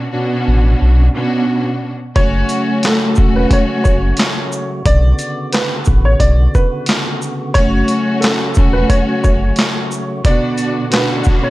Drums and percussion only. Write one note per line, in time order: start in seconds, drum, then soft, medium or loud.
2.16 kick loud
2.16 closed hi-hat medium
2.49 closed hi-hat medium
2.49 shaker medium
2.83 snare loud
2.83 clap loud
2.83 closed hi-hat medium
3.15 kick loud
3.15 shaker medium
3.51 kick medium
3.51 closed hi-hat medium
3.85 kick medium
3.85 shaker medium
4.17 snare loud
4.17 clap medium
4.17 closed hi-hat medium
4.52 shaker medium
4.86 kick loud
4.86 closed hi-hat medium
5.19 closed hi-hat medium
5.19 shaker medium
5.53 snare loud
5.53 clap loud
5.53 closed hi-hat medium
5.85 kick loud
5.85 shaker medium
6.20 kick medium
6.20 closed hi-hat medium
6.55 kick medium
6.55 shaker medium
6.86 snare loud
6.86 clap medium
6.86 closed hi-hat medium
7.22 shaker medium
7.55 kick loud
7.55 closed hi-hat medium
7.88 closed hi-hat medium
7.88 shaker medium
8.22 snare loud
8.22 clap loud
8.22 closed hi-hat medium
8.54 kick loud
8.54 shaker medium
8.90 kick medium
8.90 closed hi-hat medium
9.24 kick medium
9.24 shaker medium
9.56 snare loud
9.56 clap medium
9.56 closed hi-hat medium
9.91 shaker medium
10.25 kick loud
10.25 closed hi-hat medium
10.58 closed hi-hat medium
10.58 shaker medium
10.92 snare loud
10.92 clap loud
10.92 closed hi-hat medium
11.24 kick loud
11.24 snare soft
11.24 shaker medium